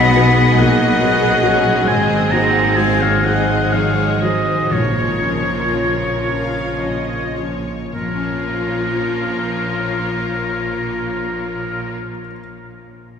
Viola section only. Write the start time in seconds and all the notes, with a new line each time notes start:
Already playing: F#3 G#4
0.16 G#3
0.58 A#3
1.00 B3
1.43 C#4
1.86 C4
3.23 G#3 G#4
4.71 F3 F4
7.92 F3 F4